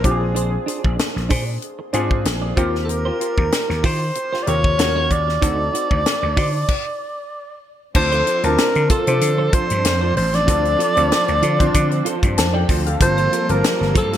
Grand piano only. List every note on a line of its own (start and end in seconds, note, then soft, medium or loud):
0.04 1.06 C4 medium
0.04 1.06 D4 medium
0.04 1.06 F4 medium
0.04 0.11 G4 medium
0.11 1.09 G#4 medium
1.93 2.52 C4 medium
1.93 2.53 D4 medium
1.93 2.53 F4 medium
1.93 2.53 G#4 medium
2.56 3.59 C4 medium
2.56 3.59 F4 medium
2.56 3.59 G4 medium
2.56 3.59 A#4 loud
4.46 4.78 C3 medium
4.46 4.77 F4 medium
4.46 4.79 G4 medium
4.46 4.77 A#4 medium
4.78 5.30 C#4 medium
4.78 5.30 F4 medium
4.78 5.30 F#4 medium
4.78 5.31 A#4 medium
5.41 6.21 C4 medium
5.41 6.21 D#4 medium
5.41 6.21 F#4 medium
5.41 6.22 A4 medium
7.95 8.24 C4 medium
7.95 8.24 D4 medium
7.95 8.25 F4 medium
7.95 8.25 A4 medium
8.43 8.82 C4 medium
8.43 8.82 D4 medium
8.43 8.82 F4 medium
8.43 8.83 A5 medium
9.07 9.84 C4 medium
9.07 9.84 D4 medium
9.07 9.84 F4 medium
9.07 9.84 C5 medium
10.47 10.77 C4 medium
10.47 10.77 D4 medium
10.47 10.77 F4 medium
10.47 10.78 A4 medium
10.96 11.34 C4 medium
10.96 11.35 D4 medium
10.96 11.35 F4 medium
10.96 11.35 A4 medium
11.59 12.36 C4 medium
11.59 12.36 D4 medium
11.59 12.36 F4 medium
11.59 12.37 C5 loud
12.37 12.54 C5 medium
12.37 12.54 A5 medium
12.54 12.84 G5 medium
12.86 13.00 A4 medium
12.86 13.16 F5 medium
13.01 13.30 A#3 medium
13.01 13.30 C4 medium
13.01 13.30 F4 medium
13.01 13.31 A4 medium
13.49 13.87 A#3 medium
13.49 13.88 C4 medium
13.49 13.88 F4 medium
13.49 13.88 A5 medium
14.12 14.17 A3 medium
14.12 14.17 C4 medium
14.12 14.17 F4 medium
14.12 14.17 A4 medium